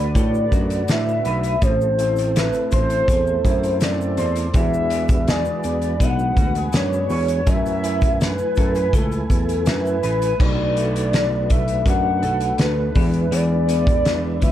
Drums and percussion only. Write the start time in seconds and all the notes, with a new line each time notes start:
0.15 kick, closed hi-hat, shaker
0.34 shaker
0.52 kick, closed hi-hat, shaker
0.70 closed hi-hat, shaker
0.88 snare, closed hi-hat, shaker
1.08 shaker
1.25 closed hi-hat, shaker
1.43 closed hi-hat, shaker
1.62 kick, closed hi-hat, shaker
1.81 shaker
1.99 closed hi-hat, shaker
2.16 closed hi-hat, shaker
2.36 snare, closed hi-hat, shaker
2.53 closed hi-hat, shaker
2.71 kick, closed hi-hat, shaker
2.90 closed hi-hat, shaker
3.08 kick, closed hi-hat, shaker
3.27 shaker
3.45 kick, closed hi-hat, shaker
3.63 closed hi-hat, shaker
3.81 snare, closed hi-hat, shaker
4.01 shaker
4.17 closed hi-hat, shaker
4.36 closed hi-hat, shaker
4.54 kick, closed hi-hat, shaker
4.74 shaker
4.90 closed hi-hat, shaker
5.09 kick, closed hi-hat, shaker
5.28 snare, closed hi-hat, shaker
5.45 shaker
5.63 closed hi-hat, shaker
5.82 closed hi-hat, shaker
6.00 kick, closed hi-hat, shaker
6.19 shaker
6.37 kick, closed hi-hat, shaker
6.55 closed hi-hat, shaker
6.72 snare, closed hi-hat, shaker
6.93 shaker
7.10 open hi-hat, shaker
7.28 closed hi-hat, shaker
7.47 kick, closed hi-hat, shaker
7.66 closed hi-hat, shaker
7.84 closed hi-hat, shaker
8.01 kick, closed hi-hat, shaker
8.21 snare, closed hi-hat, shaker
8.38 shaker
8.56 kick, closed hi-hat, shaker
8.75 closed hi-hat, shaker
8.93 kick, closed hi-hat, shaker
9.12 closed hi-hat, shaker
9.30 kick, closed hi-hat, shaker
9.49 closed hi-hat, shaker
9.66 snare, closed hi-hat, shaker
9.85 closed hi-hat, shaker
10.03 closed hi-hat, shaker
10.22 closed hi-hat, shaker
10.40 kick, crash
10.77 closed hi-hat
10.96 closed hi-hat
11.13 snare, closed hi-hat
11.50 kick, closed hi-hat
11.68 closed hi-hat
11.86 kick, closed hi-hat
12.23 closed hi-hat
12.40 closed hi-hat
12.58 snare, closed hi-hat
12.95 kick, open hi-hat
13.14 closed hi-hat
13.32 closed hi-hat
13.69 closed hi-hat
13.87 kick, closed hi-hat
14.05 snare, closed hi-hat
14.42 kick, closed hi-hat